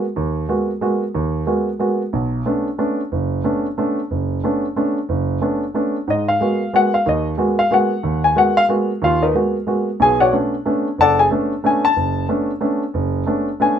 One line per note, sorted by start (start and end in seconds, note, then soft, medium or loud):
0.16 0.44 D#2 medium
0.49 0.70 G#3 soft
0.49 0.70 A#3 soft
0.49 0.70 B3 soft
0.49 0.70 F#4 medium
0.81 1.03 G#3 medium
0.81 1.03 A#3 soft
0.81 1.03 B3 soft
0.81 1.03 F#4 medium
1.15 1.42 D#2 medium
1.47 1.68 G#3 medium
1.47 1.68 A#3 soft
1.47 1.68 B3 soft
1.47 1.68 F#4 medium
1.79 2.01 G#3 soft
1.79 2.01 A#3 soft
1.79 2.01 B3 soft
1.79 2.01 F#4 medium
2.13 2.41 B1 medium
2.46 2.67 A3 medium
2.46 2.67 B3 soft
2.46 2.67 C#4 soft
2.46 2.67 D4 medium
2.78 3.00 A3 medium
2.78 3.00 B3 soft
2.78 3.00 C#4 soft
2.78 3.00 D4 medium
3.12 3.40 F#1 medium
3.44 3.65 A3 medium
3.44 3.66 B3 soft
3.44 3.66 C#4 soft
3.44 3.66 D4 medium
3.78 3.99 A3 soft
3.78 3.99 B3 soft
3.78 3.99 C#4 soft
3.78 3.99 D4 medium
4.11 4.38 F#1 medium
4.44 4.64 A3 soft
4.44 4.65 B3 soft
4.44 4.65 C#4 soft
4.44 4.65 D4 medium
4.76 4.97 A3 medium
4.76 4.97 B3 soft
4.76 4.97 C#4 soft
4.76 4.97 D4 medium
5.09 5.37 F#1 medium
5.41 5.63 A3 soft
5.41 5.63 B3 soft
5.41 5.63 C#4 soft
5.41 5.63 D4 medium
5.74 5.95 A3 medium
5.74 5.96 B3 soft
5.74 5.96 C#4 soft
5.74 5.96 D4 medium
6.08 6.35 G#2 medium
6.08 6.28 D#5 medium
6.28 6.70 F5 medium
6.41 6.61 G#3 soft
6.41 6.62 A#3 soft
6.41 6.62 B3 soft
6.41 6.62 F#4 medium
6.73 6.94 G#3 medium
6.73 6.94 A#3 soft
6.73 6.94 B3 soft
6.73 6.94 F#4 medium
6.73 6.93 F#5 medium
6.94 7.06 F5 medium
7.06 7.34 D#2 medium
7.06 7.34 D#3 medium
7.06 7.26 D#5 medium
7.38 7.59 G#3 medium
7.38 7.59 A#3 soft
7.38 7.59 B3 soft
7.38 7.60 F#4 medium
7.59 7.71 F5 medium
7.71 7.92 G#3 medium
7.71 7.92 A#3 soft
7.71 7.92 B3 soft
7.71 7.92 F#4 medium
7.71 8.21 F#5 medium
8.03 8.31 D#2 medium
8.24 8.36 G#5 medium
8.36 8.57 G#3 medium
8.36 8.57 A#3 soft
8.36 8.57 B3 soft
8.36 8.58 F#4 medium
8.36 8.57 F#5 medium
8.57 8.64 F5 loud
8.69 8.90 G#3 medium
8.69 8.90 A#3 soft
8.69 8.90 B3 soft
8.69 8.91 F#4 medium
9.02 9.30 D#2 medium
9.02 9.22 F4 medium
9.02 9.22 F5 medium
9.22 9.34 D#4 medium
9.22 9.35 A#4 medium
9.22 9.35 B4 medium
9.22 9.34 D#5 medium
9.34 9.56 G#3 soft
9.34 9.56 A#3 soft
9.34 9.56 B3 soft
9.34 9.56 F#4 medium
9.67 9.88 G#3 medium
9.67 9.88 A#3 soft
9.67 9.89 B3 soft
9.67 9.89 F#4 medium
10.00 10.28 B1 medium
10.00 10.28 B2 medium
10.00 10.21 G#4 medium
10.00 10.20 G#5 medium
10.20 10.33 F#4 medium
10.20 10.33 C#5 medium
10.20 10.33 D5 medium
10.20 10.32 F#5 medium
10.33 10.54 A3 medium
10.33 10.54 B3 soft
10.33 10.54 C#4 soft
10.33 10.54 D4 medium
10.65 10.87 A3 medium
10.65 10.87 B3 soft
10.65 10.87 C#4 medium
10.65 10.87 D4 medium
10.98 11.26 F#1 medium
10.98 11.19 A4 medium
10.98 11.19 D5 medium
10.98 11.19 F#5 medium
10.98 11.19 A5 loud
11.19 11.27 G#4 medium
11.19 11.26 G#5 medium
11.31 11.52 A3 medium
11.31 11.52 B3 soft
11.31 11.52 C#4 soft
11.31 11.52 D4 medium
11.64 11.85 A3 medium
11.64 11.85 B3 medium
11.64 11.85 C#4 soft
11.64 11.85 D4 medium
11.64 11.84 G#5 medium
11.85 12.26 A5 medium
11.96 12.24 F#1 medium
12.29 12.50 A3 medium
12.29 12.50 B3 soft
12.29 12.50 C#4 soft
12.29 12.50 D4 medium
12.61 12.82 A3 medium
12.61 12.82 B3 soft
12.61 12.82 C#4 medium
12.61 12.82 D4 medium
12.94 13.22 F#1 medium
13.26 13.48 A3 medium
13.26 13.48 B3 soft
13.26 13.48 C#4 soft
13.26 13.48 D4 medium
13.60 13.79 A3 medium
13.60 13.79 B3 medium
13.60 13.79 C#4 soft
13.60 13.79 D4 medium
13.60 13.79 G#5 medium